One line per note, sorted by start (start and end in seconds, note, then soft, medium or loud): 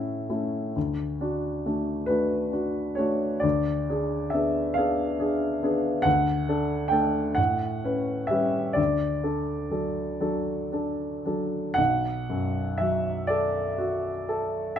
0.00 0.78 A2 soft
0.00 0.26 C#4 soft
0.00 0.26 E4 soft
0.00 0.28 A4 medium
0.29 0.71 A3 soft
0.29 0.71 C#4 soft
0.29 0.72 E4 soft
0.76 1.20 D2 soft
1.21 1.62 D4 soft
1.21 1.62 F#4 soft
1.66 2.06 A3 soft
1.66 2.06 D4 soft
1.66 2.06 F#4 soft
2.06 2.49 A3 soft
2.06 2.49 D4 soft
2.06 2.49 F#4 soft
2.06 2.96 B4 medium
2.52 2.93 D4 soft
2.52 2.94 F#4 soft
2.95 3.40 A3 soft
2.95 3.40 D4 soft
2.95 3.40 F#4 soft
2.95 3.42 C#5 medium
3.40 3.87 D2 soft
3.40 4.30 D5 medium
3.89 4.29 D4 soft
3.89 4.29 G#4 soft
4.30 4.72 B3 soft
4.30 4.72 D4 soft
4.30 4.74 E5 medium
4.34 4.73 G#4 soft
4.74 5.16 B3 soft
4.74 5.16 D4 soft
4.74 5.16 G#4 soft
4.74 6.04 F5 medium
5.19 5.58 D4 soft
5.19 5.59 G#4 soft
5.63 6.02 B3 soft
5.63 6.01 D4 soft
5.63 6.02 G#4 soft
6.02 6.46 D2 medium
6.02 6.90 F#5 medium
6.49 6.88 D4 soft
6.49 6.88 A4 soft
6.88 7.33 A3 soft
6.88 7.33 D4 soft
6.88 7.34 A4 soft
6.88 7.36 G5 medium
7.35 7.83 A2 soft
7.35 8.29 F#5 medium
7.84 8.27 C#4 soft
7.84 8.27 B4 soft
8.27 8.73 G3 soft
8.27 8.74 C#4 soft
8.27 8.76 E5 medium
8.31 8.74 B4 soft
8.73 9.23 D2 soft
8.73 11.23 D5 medium
9.23 9.68 D4 soft
9.23 9.68 A4 soft
9.70 10.17 F#3 soft
9.70 10.18 D4 soft
9.70 10.18 A4 soft
10.20 10.68 F#3 soft
10.20 10.68 D4 soft
10.20 10.69 A4 soft
10.73 11.21 D4 soft
10.73 11.21 A4 soft
11.25 11.74 F#3 soft
11.25 11.74 D4 soft
11.25 11.74 A4 soft
11.74 14.75 B1 soft
11.74 12.78 F#5 medium
12.29 13.09 F#2 soft
12.78 13.59 F#3 soft
12.78 13.28 E5 medium
13.27 14.09 A4 soft
13.27 14.79 D5 medium
13.78 14.59 F#4 soft
14.29 14.79 A4 soft
14.76 14.79 E5 medium